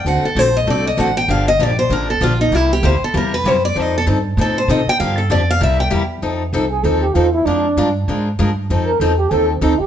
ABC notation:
X:1
M:4/4
L:1/8
Q:"Swing" 1/4=195
K:Fmix
V:1 name="Steel-string acoustic guitar"
^f A c e d e f g | f e d c B A F E | =E G c A B =B c d | e A z2 A c e g |
f A d f =e g z2 | z8 | z8 | z8 |]
V:2 name="Flugelhorn"
z8 | z8 | z8 | z8 |
z8 | z3 _A =A G F =E | D3 z4 z | z B A G A C E G |]
V:3 name="Steel-string acoustic guitar"
[D,A,C^FA] z [D,A,CFA] z [D,A,CFA] z [D,A,CFA] z | [D,F,B,DG] z [D,F,B,DG] z [D,F,B,DG] z [D,F,B,DG] z | [C,G,B,=EG] z [C,G,B,EG] z [C,G,B,EG] z [C,G,B,EG] z | [F,CEA] z [F,CEA] z [F,CEA] z [F,CEA] z |
[D,F,B,DG] z [D,F,B,DG] z [C,G,B,=EG] z [C,G,B,EG] z | [F,CEA] z [F,CEA] z [F,CEA] z [F,CEA] z | [F,_A,DFB] z [F,A,DFB] z [F,A,DFB] z [F,A,DFB] z | [F,CEA] z [F,CEA] z [F,CEA] z [F,CEA] z |]
V:4 name="Upright bass" clef=bass
D,, z B,,,2 C,,2 A,,,2 | G,,,2 B,,,2 A,,,2 B,,,2 | C,,2 D,, z =E,,2 _G,,2 | F,,2 G,,2 A,,2 C, z |
G,,2 F,,2 C,,2 =E,,2 | F,,2 C,,2 E,,2 =E,,2 | F,,2 G,,2 _A,,2 G,,2 | F,,2 =E,,2 _E,,2 D,, z |]